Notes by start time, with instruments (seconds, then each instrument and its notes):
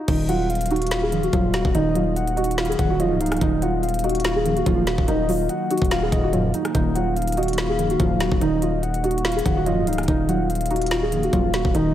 0.08 808-style bass D#1, ambient pad D#3 F#3 A#3 D#4, synth pluck D#3, felt piano D#4, kick, closed hi-hat, crash
0.29 synth pluck F#3, felt piano F4, soft synth lead F#5, closed hi-hat
0.50 soft synth lead F5, closed hi-hat
0.55 closed hi-hat
0.61 closed hi-hat
0.66 closed hi-hat
0.71 synth pluck D#4, felt piano F#4, closed hi-hat
0.76 closed hi-hat
0.82 closed hi-hat
0.87 closed hi-hat
0.91 synth pluck F4, snare, closed hi-hat
1.03 felt piano G#4
1.12 analog polysynth F#2 A#2 F3, synth pluck D#3, closed hi-hat
1.23 felt piano F#4, closed hi-hat
1.33 808-style bass D#1, analog polysynth F#2 A#2 F3, synth pluck F#3, felt piano F4, kick, closed hi-hat
1.54 felt piano F#4, snare, closed hi-hat
1.65 808-style bass D#1, kick
1.75 808-style bass D#1, synth pluck D#3, felt piano D#4, soft synth lead D#5, closed hi-hat
1.95 synth pluck F#3, felt piano F4, closed hi-hat
2.16 soft synth lead F#5, closed hi-hat
2.27 closed hi-hat
2.37 synth pluck D#4, felt piano F#4, closed hi-hat
2.44 closed hi-hat
2.51 closed hi-hat
2.58 synth pluck F4, soft synth lead F5, snare, closed hi-hat
2.65 closed hi-hat
2.69 felt piano G#4, closed hi-hat
2.79 808-style bass D#1, analog polysynth F#2 A#2 F3, synth pluck D#3, soft synth lead F#5, kick, closed hi-hat
2.90 felt piano F#4
3.00 analog polysynth F#2 A#2 F3, synth pluck F#3, felt piano F4, soft synth lead D#5, closed hi-hat
3.11 808-style bass C#1
3.21 felt piano D#4, soft synth lead F5, closed hi-hat
3.26 closed hi-hat
3.32 cross-stick, closed hi-hat
3.37 closed hi-hat
3.41 808-style bass D#1, synth pluck D#3, felt piano D#4, kick, closed hi-hat
3.62 synth pluck F#3, felt piano F4, soft synth lead F#5, closed hi-hat
3.83 soft synth lead F5, closed hi-hat
3.89 closed hi-hat
3.94 closed hi-hat
3.99 closed hi-hat
4.04 synth pluck D#4, felt piano F#4, closed hi-hat
4.09 closed hi-hat
4.15 closed hi-hat
4.20 closed hi-hat
4.24 synth pluck F4, snare, closed hi-hat
4.36 felt piano G#4
4.45 analog polysynth F#2 A#2 F3, synth pluck D#3, closed hi-hat
4.57 felt piano F#4, closed hi-hat
4.66 808-style bass D#1, analog polysynth F#2 A#2 F3, synth pluck F#3, felt piano F4, kick, closed hi-hat
4.87 felt piano F#4, snare, closed hi-hat
4.98 808-style bass D#1, kick
5.08 808-style bass D#1, synth pluck D#3, felt piano D#4, soft synth lead D#5, closed hi-hat
5.29 synth pluck F#3, felt piano F4, open hi-hat
5.49 soft synth lead F#5, closed hi-hat
5.71 synth pluck D#4, felt piano F#4, closed hi-hat
5.78 closed hi-hat
5.82 808-style bass D#1, kick, closed hi-hat
5.91 synth pluck F4, soft synth lead F5, snare, closed hi-hat
6.02 felt piano G#4
6.12 808-style bass D#1, analog polysynth F#2 A#2 F3, synth pluck D#3, soft synth lead D#5, kick, closed hi-hat
6.23 felt piano F#4
6.33 analog polysynth F#2 A#2 F3, synth pluck F#3, felt piano F4, closed hi-hat
6.54 felt piano D#4, closed hi-hat
6.65 cross-stick, closed hi-hat
6.75 808-style bass D#1, synth pluck D#3, ambient pad D#4, felt piano D#4, kick, closed hi-hat
6.95 synth pluck F#3, felt piano F4, soft synth lead F#5, closed hi-hat
7.16 soft synth lead F5, closed hi-hat
7.22 closed hi-hat
7.27 closed hi-hat
7.32 closed hi-hat
7.37 synth pluck D#4, felt piano F#4, closed hi-hat
7.43 closed hi-hat
7.48 closed hi-hat
7.53 closed hi-hat
7.58 synth pluck F4, snare, closed hi-hat
7.69 felt piano G#4
7.79 analog polysynth F#2 A#2 F3, synth pluck D#3, closed hi-hat
7.90 felt piano F#4, closed hi-hat
8.00 808-style bass D#1, analog polysynth F#2 A#2 F3, synth pluck F#3, felt piano F4, kick, closed hi-hat
8.20 felt piano F#4, snare, closed hi-hat
8.32 808-style bass D#1, kick
8.41 808-style bass D#1, synth pluck D#3, felt piano D#4, soft synth lead D#5, closed hi-hat
8.62 synth pluck F#3, felt piano F4, closed hi-hat
8.83 soft synth lead F#5, closed hi-hat
8.94 closed hi-hat
9.04 synth pluck D#4, felt piano F#4, closed hi-hat
9.11 closed hi-hat
9.18 closed hi-hat
9.25 synth pluck F4, soft synth lead F5, snare, closed hi-hat
9.32 closed hi-hat
9.36 felt piano G#4, closed hi-hat
9.45 808-style bass D#1, analog polysynth F#2 A#2 F3, synth pluck D#3, soft synth lead F#5, kick, closed hi-hat
9.57 felt piano F#4
9.66 analog polysynth F#2 A#2 F3, synth pluck F#3, felt piano F4, soft synth lead D#5, closed hi-hat
9.77 808-style bass C#1
9.87 felt piano D#4, soft synth lead F5, closed hi-hat
9.93 closed hi-hat
9.98 cross-stick, closed hi-hat
10.03 closed hi-hat
10.08 808-style bass D#1, synth pluck D#3, ambient pad D#3 F#3 A#3, felt piano D#4, kick, closed hi-hat
10.29 synth pluck F#3, felt piano F4, soft synth lead F#5, closed hi-hat
10.50 soft synth lead F5, closed hi-hat
10.55 closed hi-hat
10.61 closed hi-hat
10.66 closed hi-hat
10.71 synth pluck D#4, felt piano F#4, closed hi-hat
10.76 closed hi-hat
10.82 closed hi-hat
10.86 closed hi-hat
10.91 synth pluck F4, snare, closed hi-hat
11.02 felt piano G#4
11.12 analog polysynth F#2 A#2 F3, synth pluck D#3, closed hi-hat
11.23 felt piano F#4, closed hi-hat
11.33 808-style bass D#1, analog polysynth F#2 A#2 F3, synth pluck F#3, felt piano F4, kick, closed hi-hat
11.54 felt piano F#4, snare, closed hi-hat
11.65 808-style bass D#1, kick
11.75 808-style bass D#1, synth pluck D#3, felt piano D#4, soft synth lead D#5, closed hi-hat